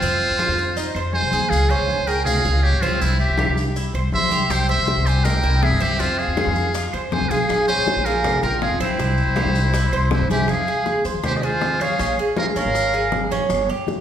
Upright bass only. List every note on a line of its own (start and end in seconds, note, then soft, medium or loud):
0.02 0.29 F2 medium
0.30 0.48 F2 medium
0.48 0.93 F2 medium
0.95 1.22 F2 medium
1.22 1.32 C2 medium
1.32 1.50 D#2 medium
1.51 1.78 C#2 loud
1.79 1.97 C#2 medium
1.98 2.43 C#2 medium
2.45 2.72 C#2 loud
2.73 2.82 G#1 medium
2.82 3.00 C#2 medium
3.01 3.28 C2 loud
3.30 3.47 C2 medium
3.48 3.92 C2 medium
3.94 4.12 C2 loud
4.13 4.30 A#1 medium
4.31 4.48 C2 medium
4.50 4.77 C2 loud
4.78 4.96 C2 medium
4.97 5.41 C2 medium
5.44 5.70 C2 loud
5.72 5.81 G2 medium
5.81 5.99 C2 medium
6.00 6.27 F2 loud
6.28 6.46 F2 medium
6.47 6.91 F2 loud
6.94 7.20 F2 medium
7.21 7.30 C2 medium
7.30 7.48 B1 medium
7.50 7.76 A#1 medium
7.78 7.95 A#1 medium
7.96 8.41 A#1 medium
8.43 8.69 A#1 loud
8.71 8.79 F2 medium
8.80 8.98 A#1 medium
8.98 9.25 C2 loud
9.27 9.45 C2 medium
9.46 9.90 C2 loud
9.93 10.19 C2 loud
10.21 10.29 G2 medium
10.30 10.48 C2 loud
10.49 10.67 F2 medium
11.05 11.14 F3 medium
11.14 11.86 D#2 loud
11.99 12.17 A#1 medium
12.56 12.64 A#2 medium
12.65 13.36 G#1 loud
13.50 13.68 G1 loud